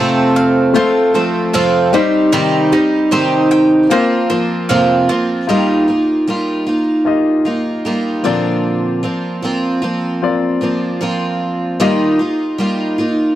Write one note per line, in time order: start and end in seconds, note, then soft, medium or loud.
0.00 0.75 F2 medium
0.00 0.75 C3 medium
0.00 0.73 F3 medium
0.00 0.18 A3 medium
0.00 0.74 A3 medium
0.00 1.93 A3 medium
0.00 0.18 C4 medium
0.00 0.75 C4 medium
0.00 0.19 F4 medium
0.00 0.74 F4 medium
0.00 0.75 A4 loud
0.00 0.19 C5 loud
0.00 1.15 C5 medium
0.36 1.53 F5 medium
0.74 1.14 F3 medium
0.74 1.75 A3 medium
0.74 1.14 A3 medium
0.74 1.75 C4 medium
0.74 1.14 C4 medium
0.74 1.76 F4 medium
0.74 2.02 F4 medium
0.74 1.13 A4 medium
0.74 1.76 C5 medium
1.14 1.53 F3 soft
1.14 1.53 A3 medium
1.14 1.54 C4 soft
1.14 1.54 A4 medium
1.14 3.12 C5 medium
1.53 1.93 F2 medium
1.53 1.93 C3 medium
1.53 1.94 F3 medium
1.53 1.94 A3 medium
1.53 1.94 C4 loud
1.53 1.93 A4 loud
1.53 2.02 F5 medium
1.93 3.20 G3 medium
1.93 2.31 G3 medium
1.93 3.20 C4 medium
1.93 2.32 C4 medium
1.93 3.21 D#4 medium
1.93 2.32 D#4 medium
1.93 2.32 G4 medium
1.93 3.21 C5 medium
2.32 2.72 C3 medium
2.32 2.72 D#3 loud
2.32 3.90 G3 medium
2.32 2.72 C4 medium
2.32 2.72 D#4 loud
2.32 2.71 G4 medium
2.72 3.11 C4 soft
2.72 3.99 D#4 medium
2.72 3.12 D#4 soft
2.72 3.12 G4 medium
3.11 3.90 C3 medium
3.11 3.90 D#3 medium
3.11 3.90 C4 medium
3.11 3.91 D#4 medium
3.11 3.91 G4 medium
3.11 3.99 C5 medium
3.51 3.99 G5 medium
3.90 4.30 F3 medium
3.90 4.91 A#3 medium
3.90 4.30 A#3 medium
3.90 6.07 A#3 medium
3.90 4.92 C4 medium
3.90 4.29 C4 medium
3.90 4.92 F4 medium
3.90 4.29 F4 medium
3.90 4.92 C5 medium
4.30 4.69 F3 soft
4.30 4.69 A#3 medium
4.30 4.70 C4 medium
4.30 4.69 F4 medium
4.30 5.57 C5 medium
4.69 5.09 F2 medium
4.69 5.09 C3 medium
4.69 5.09 F3 medium
4.69 5.09 A#3 medium
4.69 5.09 C4 medium
4.69 5.08 F4 medium
4.69 6.07 F5 medium
5.09 5.49 F3 soft
5.09 5.48 A#3 medium
5.09 5.49 C4 medium
5.09 6.07 F4 medium
5.09 5.49 F4 medium
5.47 5.88 D#3 medium
5.47 5.88 G3 medium
5.47 6.49 A#3 medium
5.47 5.88 A#3 medium
5.47 5.88 D#4 medium
5.47 6.49 F4 medium
5.47 5.87 F4 medium
5.47 6.49 G4 medium
5.47 6.50 D#5 medium
5.88 6.27 A#3 soft
5.88 6.28 D#4 soft
5.88 6.27 F4 soft
6.27 6.67 G3 medium
6.27 6.67 A#3 medium
6.27 6.67 D#4 medium
6.27 6.65 F4 medium
6.67 7.47 A#3 soft
6.67 7.45 D#4 soft
6.67 7.45 F4 medium
7.05 8.07 A#3 medium
7.05 8.07 F4 medium
7.05 8.08 G4 medium
7.05 8.08 D#5 medium
7.45 7.85 A#3 soft
7.45 7.85 D#4 soft
7.45 7.85 F4 soft
7.85 8.25 G3 medium
7.85 8.24 A#3 medium
7.85 8.24 D#4 medium
7.85 8.23 F4 medium
8.23 9.04 A#2 medium
8.23 9.04 D3 medium
8.23 9.05 F3 medium
8.23 9.04 A#3 medium
8.23 9.51 C4 medium
8.23 9.03 C4 medium
8.23 9.02 F4 medium
8.23 9.52 F4 medium
8.23 9.52 A#4 medium
8.23 9.52 D5 medium
9.03 9.41 F3 soft
9.03 9.42 A#3 soft
9.03 9.43 C4 soft
9.03 9.43 F4 medium
9.43 9.82 F3 medium
9.43 9.82 A#3 medium
9.43 9.82 C4 medium
9.43 9.81 F4 medium
9.82 10.63 F3 soft
9.82 10.62 A#3 soft
9.82 10.61 C4 soft
9.82 10.61 F4 medium
10.22 11.23 C4 medium
10.22 11.24 F4 medium
10.22 11.24 A#4 medium
10.22 11.24 D5 medium
10.61 10.99 F3 soft
10.61 11.00 A#3 soft
10.61 11.01 C4 soft
10.61 11.01 F4 soft
11.01 11.80 F3 medium
11.01 11.80 A#3 medium
11.01 11.80 C4 medium
11.01 11.81 F4 medium
11.80 12.19 D#3 medium
11.80 12.20 G3 medium
11.80 12.81 A#3 medium
11.80 12.20 A#3 medium
11.80 12.20 D#4 medium
11.80 12.81 F4 medium
11.80 12.18 F4 medium
11.80 12.82 G4 medium
11.80 12.82 D#5 medium
12.19 12.58 A#3 soft
12.19 12.59 D#4 soft
12.19 12.59 F4 medium
12.58 12.98 G3 medium
12.58 12.99 A#3 medium
12.58 12.98 D#4 medium
12.58 12.97 F4 medium
12.98 13.35 A#3 soft
12.98 13.35 D#4 soft
12.98 13.35 F4 medium